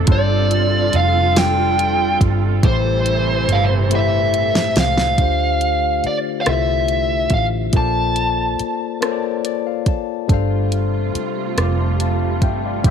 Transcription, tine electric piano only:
0.07 1.02 G3 medium
0.07 1.03 D4 medium
0.07 1.03 F4 medium
0.07 1.04 A4 medium
0.12 0.16 B4 medium
0.19 1.08 C5 loud
1.35 2.30 G3 medium
1.35 2.31 D4 medium
1.35 2.31 F4 medium
1.39 2.32 A4 medium
1.39 2.32 D5 medium
2.63 3.58 A2 medium
2.63 3.58 A3 medium
2.63 3.59 E4 medium
2.63 3.60 G4 medium
2.68 3.60 C5 medium
3.89 4.85 A2 medium
3.89 4.85 A3 medium
3.89 4.86 E4 medium
3.89 4.87 G4 medium
3.95 4.88 C5 medium
5.17 6.13 D3 medium
5.17 6.13 A3 medium
5.17 6.13 D4 medium
5.17 6.14 F4 medium
5.17 6.15 G4 medium
5.22 6.15 C5 medium
6.44 7.40 D3 medium
6.44 7.41 A3 medium
6.44 7.41 E4 medium
6.44 7.41 F4 medium
6.49 7.42 G4 medium
6.49 7.43 C5 medium
7.72 8.68 A#3 medium
7.72 8.68 F4 medium
7.72 8.69 A4 medium
7.72 8.69 C5 medium
7.77 8.70 D5 medium
9.00 9.96 A#3 medium
9.00 9.96 F4 medium
9.00 9.97 A4 medium
9.00 9.98 C5 medium
9.06 9.10 C#5 medium
9.12 9.44 D5 medium
9.46 9.65 D5 medium
9.67 9.86 F5 medium
9.88 10.27 A5 medium
10.28 11.23 G3 medium
10.28 11.24 D4 medium
10.28 11.25 A4 medium
10.28 11.25 C5 medium
10.33 11.26 F5 medium
11.58 11.78 D6 medium
11.80 12.00 A5 soft
11.80 11.99 C6 medium
12.01 12.41 F5 medium
12.01 12.40 A5 medium
12.43 12.63 E5 medium
12.43 12.63 G5 medium
12.66 12.90 D5 medium
12.66 12.90 F5 medium
12.83 12.90 A2 loud
12.83 12.90 A3 medium
12.83 12.90 G4 medium
12.83 12.90 C5 medium

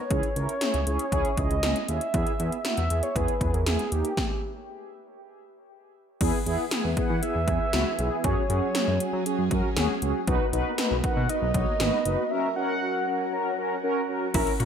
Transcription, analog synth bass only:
0.11 0.22 C#2 medium
0.36 0.47 C#2 loud
0.74 0.85 C#2 loud
0.87 0.98 C#2 loud
1.12 1.23 C#2 loud
1.37 1.49 C#2 medium
1.50 1.61 C#2 medium
1.63 1.74 C#2 medium
1.89 2.00 D#2 medium
2.14 2.25 E2 loud
2.40 2.50 E2 loud
2.78 2.89 E2 medium
2.90 3.01 E2 loud
3.16 3.27 E2 loud
3.41 3.52 E2 loud
3.54 3.65 E2 loud
3.67 3.78 E2 loud
3.92 4.03 D#2 loud
6.21 6.32 E2 loud
6.46 6.57 E2 loud
6.84 6.95 E2 loud
7.10 7.21 E3 loud
7.35 7.46 E2 medium
7.48 7.59 E2 loud
7.73 7.84 C#2 loud
7.99 8.10 B1 loud
8.24 8.35 F#2 loud
8.50 8.61 F#2 loud
8.88 8.99 F#2 loud
9.13 9.24 F#3 loud
9.39 9.50 F#2 loud
9.51 9.62 F#2 loud
9.77 9.88 D#2 loud
10.02 10.13 C#2 loud
10.28 10.39 B1 loud
10.53 10.64 B1 loud
10.91 11.02 B1 loud
11.17 11.28 B2 loud
11.42 11.53 B1 loud
11.54 11.66 B1 loud
11.80 11.91 G#1 medium
12.06 12.17 F#1 loud
14.34 14.45 A#1 loud
14.60 14.65 A#2 loud

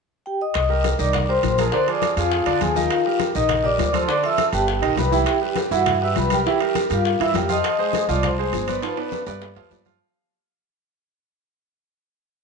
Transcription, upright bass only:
0.55 0.96 C2 medium
0.99 1.40 C2 medium
1.43 1.69 A#1 medium
2.17 2.44 F2 medium
2.46 2.60 F2 medium
2.61 2.87 D#2 medium
3.35 3.76 A#1 medium
3.79 4.05 D2 medium
4.53 4.80 G1 medium
4.83 4.96 A#1 medium
4.97 5.23 C2 medium
5.71 6.13 G2 medium
6.16 6.42 C2 medium
6.91 7.18 G2 medium
7.20 7.33 G2 medium
7.35 7.61 F2 medium
8.08 8.50 C2 medium
8.53 8.79 G1 medium
9.27 9.54 G2 medium
9.56 9.70 F2 medium
9.71 9.97 G2 medium

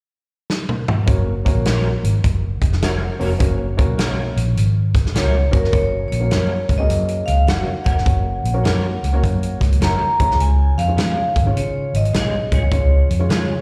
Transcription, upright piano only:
1.06 1.31 A#3 medium
1.06 1.31 C#4 medium
1.06 1.31 F#4 medium
1.06 1.31 C#5 medium
1.45 2.14 A#3 medium
1.45 2.13 C#4 medium
1.45 2.14 F#4 medium
1.45 2.14 C#5 medium
3.19 3.32 A#3 medium
3.19 3.32 C#4 medium
3.19 3.32 F#4 medium
3.19 3.33 C#5 medium
3.39 3.64 A#3 medium
3.39 3.64 C#4 medium
3.39 3.64 F#4 medium
3.39 3.64 C#5 medium
3.77 4.46 A#3 medium
3.77 4.46 C#4 medium
3.77 4.46 F#4 medium
3.77 4.46 C#5 medium
5.51 5.68 A#3 medium
5.51 5.68 C#4 medium
5.51 5.68 F#4 medium
5.51 5.69 C#5 medium
5.72 6.08 A#3 medium
5.72 6.09 C#4 medium
5.72 6.09 F#4 medium
5.72 6.09 C#5 medium
6.20 6.59 A#3 medium
6.20 6.60 C#4 medium
6.20 6.60 F#4 medium
6.20 6.60 C#5 medium
6.79 7.48 A#3 medium
6.79 7.47 C#4 medium
6.79 7.48 F#4 medium
6.79 7.48 G#4 medium
8.05 8.42 A#3 medium
8.05 8.42 C#4 medium
8.05 8.42 F#4 medium
8.05 8.42 C#5 medium
8.54 8.93 A#3 medium
8.54 8.93 C#4 medium
8.54 8.93 F#4 medium
8.54 8.93 C#5 medium
9.13 9.81 A#3 medium
9.13 9.81 C#4 medium
9.13 9.81 F#4 medium
9.13 9.81 C#5 medium
10.20 10.78 G#3 medium
10.20 10.78 C#4 medium
10.20 10.78 F4 medium
10.20 10.78 C#5 medium
10.88 11.26 G#3 medium
10.88 11.26 C#4 medium
10.88 11.27 F4 medium
10.88 11.27 C#5 medium
11.46 12.14 G#3 medium
11.46 12.14 C#4 medium
11.46 12.14 F4 medium
11.46 12.14 C#5 medium
12.71 13.07 G#3 medium
12.71 13.08 C#4 medium
12.71 13.08 F4 medium
12.71 13.08 C#5 medium
13.20 13.59 G#3 medium
13.20 13.59 C#4 medium
13.20 13.59 F4 medium
13.20 13.59 C#5 medium

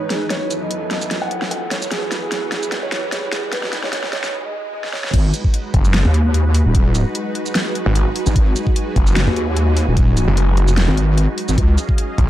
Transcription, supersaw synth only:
0.00 0.29 G#2 medium
0.00 0.29 G#3 medium
0.00 0.29 D#4 medium
0.00 0.27 B4 medium
0.30 1.90 F#2 medium
0.30 1.90 F#3 medium
0.30 1.90 E4 medium
0.30 1.90 A4 medium
1.91 3.51 E2 medium
1.91 3.51 E3 medium
1.91 3.51 G#4 medium
1.91 4.31 B4 medium
3.52 4.32 B2 medium
3.52 4.32 F#3 medium
3.52 4.32 D#4 medium
5.13 11.54 G#3 medium
5.13 11.54 D#4 medium
5.13 11.54 F#4 medium
5.13 11.54 B4 medium
11.58 12.30 C#4 medium
11.58 12.30 G#4 medium
11.58 12.30 D#5 medium
11.58 12.30 F5 medium

